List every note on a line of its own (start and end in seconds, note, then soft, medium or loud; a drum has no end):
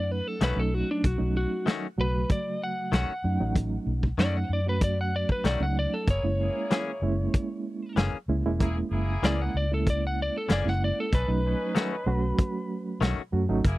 0.00 0.20 F#2 medium
0.00 0.41 F#3 medium
0.00 0.42 A3 medium
0.00 0.41 C#4 medium
0.00 0.42 D#4 medium
0.00 0.11 D5 medium
0.11 0.28 B4 medium
0.28 0.41 A4 medium
0.41 0.53 B1 medium
0.41 0.60 D#3 medium
0.41 0.60 A3 medium
0.41 0.61 C#4 medium
0.41 0.61 F#4 medium
0.41 0.58 B4 medium
0.41 snare loud
0.41 closed hi-hat medium
0.56 0.81 B1 medium
0.56 1.10 F#3 medium
0.56 1.10 A3 medium
0.56 1.10 C#4 medium
0.56 1.10 D#4 medium
0.56 0.74 A4 medium
0.74 0.89 F#4 medium
0.91 1.04 D4 medium
1.04 1.16 B1 loud
1.04 1.35 F#4 medium
1.04 kick loud
1.04 closed hi-hat medium
1.18 1.44 B1 medium
1.18 1.85 F#3 medium
1.18 1.86 A3 medium
1.18 1.85 C#4 medium
1.18 1.86 D#4 medium
1.37 1.66 F#4 medium
1.66 1.85 D#3 medium
1.66 1.86 A3 medium
1.66 1.86 C#4 medium
1.66 1.86 F#4 medium
1.66 snare loud
1.66 closed hi-hat soft
1.97 2.23 B1 medium
1.97 3.05 C#3 medium
1.97 3.05 F#3 medium
1.97 3.05 A3 medium
1.97 3.05 F#4 medium
1.97 2.30 B4 loud
2.29 2.61 D5 medium
2.29 kick loud
2.29 closed hi-hat medium
2.63 2.93 F#5 medium
2.92 3.05 B1 loud
2.92 3.11 D#3 medium
2.92 3.12 A3 medium
2.92 3.12 C#4 medium
2.92 3.12 F#4 loud
2.92 3.55 F#5 medium
2.92 snare loud
2.92 closed hi-hat medium
3.24 3.37 F#2 medium
3.24 3.38 F#3 medium
3.24 3.38 A3 medium
3.24 3.38 C#4 medium
3.24 3.38 D#4 medium
3.40 3.76 A1 medium
3.40 4.07 F#3 medium
3.40 4.07 A3 medium
3.40 4.07 C#4 medium
3.40 4.07 D#4 medium
3.56 kick medium
3.56 closed hi-hat medium
3.87 4.11 B1 medium
4.03 kick medium
4.18 4.43 F#2 medium
4.18 4.37 D#3 medium
4.18 4.59 F#3 medium
4.18 4.59 A3 medium
4.18 4.38 A3 medium
4.18 4.59 C#4 medium
4.18 4.38 C#4 medium
4.18 4.59 D#4 medium
4.18 4.38 F#4 medium
4.18 4.35 D5 loud
4.18 snare loud
4.18 closed hi-hat medium
4.37 4.51 F#5 medium
4.49 5.24 F#2 medium
4.49 4.67 D5 medium
4.66 5.46 F#3 medium
4.66 5.46 A3 medium
4.66 5.46 C#4 medium
4.66 5.46 F#4 medium
4.66 4.83 B4 medium
4.81 4.98 D5 medium
4.81 kick loud
4.81 closed hi-hat medium
5.01 5.14 F#5 medium
5.16 5.30 D5 medium
5.29 5.45 B4 medium
5.29 kick medium
5.44 5.57 B1 medium
5.44 5.64 D#3 medium
5.44 5.64 A3 medium
5.44 5.64 C#4 medium
5.44 5.65 F#4 medium
5.44 5.61 D5 medium
5.44 snare loud
5.44 closed hi-hat medium
5.60 5.85 C#2 medium
5.60 6.08 F#3 medium
5.60 6.07 A3 medium
5.60 6.08 C#4 medium
5.60 6.08 D#4 medium
5.60 5.77 F#5 medium
5.79 5.93 D5 medium
5.94 6.08 A4 medium
6.07 6.20 F#1 medium
6.07 6.23 A#3 medium
6.07 6.23 E4 medium
6.07 6.24 G#4 medium
6.07 7.94 C#5 medium
6.07 kick loud
6.07 closed hi-hat medium
6.23 6.48 F#1 medium
6.23 6.91 G#3 medium
6.23 6.90 A#3 medium
6.23 6.91 C#4 medium
6.23 6.91 E4 medium
6.39 7.03 A#3 medium
6.39 7.02 E4 medium
6.39 7.02 G#4 medium
6.71 6.90 E3 medium
6.71 6.90 A#3 medium
6.71 6.91 C#4 medium
6.71 6.91 G#4 medium
6.71 snare loud
6.71 closed hi-hat medium
7.02 7.27 F#1 medium
7.02 8.10 G#3 medium
7.02 8.10 A#3 medium
7.02 8.10 C#4 medium
7.02 8.10 E4 loud
7.34 kick loud
7.34 closed hi-hat medium
7.96 8.10 F#1 medium
7.96 8.16 E3 medium
7.96 8.16 A#3 medium
7.96 8.17 C#4 loud
7.96 8.17 G#4 medium
7.96 snare loud
7.96 closed hi-hat medium
8.13 muted fingered electric bass stroke soft
8.28 8.41 C#2 medium
8.28 8.43 G#3 medium
8.28 8.43 A#3 medium
8.28 8.43 C#4 medium
8.28 8.43 E4 medium
8.44 8.81 E1 medium
8.44 9.12 G#3 medium
8.44 9.12 A#3 medium
8.44 9.12 C#4 medium
8.44 9.12 E4 loud
8.59 8.76 A#3 medium
8.59 8.75 E4 medium
8.59 8.76 G#4 loud
8.59 kick loud
8.59 closed hi-hat medium
8.91 9.16 F#1 medium
8.91 9.55 A#3 medium
8.91 9.55 E4 medium
8.91 9.54 G#4 loud
9.22 9.47 C#2 medium
9.22 9.42 E3 medium
9.22 9.64 G#3 medium
9.22 9.43 A#3 medium
9.22 9.64 A#3 medium
9.22 9.64 C#4 medium
9.22 9.43 C#4 medium
9.22 9.64 E4 medium
9.22 9.43 G#4 medium
9.22 9.40 D5 loud
9.22 snare loud
9.22 closed hi-hat medium
9.42 9.55 F#5 medium
9.54 10.28 C#2 medium
9.54 9.71 D5 medium
9.71 10.51 G#3 medium
9.71 10.51 A#3 medium
9.71 10.51 C#4 medium
9.71 10.51 E4 medium
9.71 9.87 A4 medium
9.87 10.04 D5 medium
9.87 kick loud
9.87 closed hi-hat medium
10.07 10.20 F#5 medium
10.22 10.36 D5 medium
10.38 10.51 A4 medium
10.49 10.62 F#1 medium
10.49 10.68 E3 medium
10.49 10.69 A#3 medium
10.49 10.69 C#4 medium
10.49 10.69 G#4 loud
10.49 10.67 D5 loud
10.49 snare loud
10.49 closed hi-hat medium
10.65 10.90 F#1 loud
10.65 11.12 G#3 medium
10.65 11.12 A#3 medium
10.65 11.12 C#4 medium
10.65 11.12 E4 medium
10.65 10.82 F#5 loud
10.65 snare soft
10.84 10.98 D5 medium
11.00 11.14 A4 medium
11.12 11.25 B1 loud
11.12 11.28 C#4 medium
11.12 11.28 D#4 medium
11.12 11.29 A4 medium
11.12 12.99 B4 medium
11.12 kick loud
11.12 closed hi-hat medium
11.28 11.53 B1 medium
11.28 11.95 F#3 medium
11.28 11.95 A3 medium
11.28 11.95 C#4 medium
11.28 11.95 D#4 medium
11.45 12.08 C#4 medium
11.45 12.08 D#4 medium
11.45 12.08 B4 medium
11.75 11.94 D#3 medium
11.75 11.95 A3 medium
11.75 11.95 C#4 medium
11.75 11.95 F#4 medium
11.75 snare loud
11.75 closed hi-hat medium
12.06 12.31 B1 medium
12.06 13.14 F#3 loud
12.06 13.14 A3 medium
12.06 13.14 C#4 medium
12.06 13.15 F#4 loud
12.39 kick loud
12.39 closed hi-hat medium
13.01 13.14 B1 medium
13.01 13.21 D#3 medium
13.01 13.21 A3 medium
13.01 13.21 C#4 medium
13.01 13.21 F#4 loud
13.01 snare loud
13.01 closed hi-hat medium
13.32 13.46 F#2 medium
13.32 13.47 F#3 medium
13.32 13.47 A3 medium
13.32 13.47 C#4 medium
13.32 13.47 F#4 loud
13.49 13.61 G#1 medium
13.49 13.65 F#3 loud
13.49 13.65 A3 medium
13.49 13.65 C#4 medium
13.49 13.65 D#4 loud
13.64 13.78 F#1 loud
13.64 13.78 A#3 medium
13.64 13.78 E4 medium
13.64 13.78 G#4 medium
13.64 kick loud
13.64 closed hi-hat medium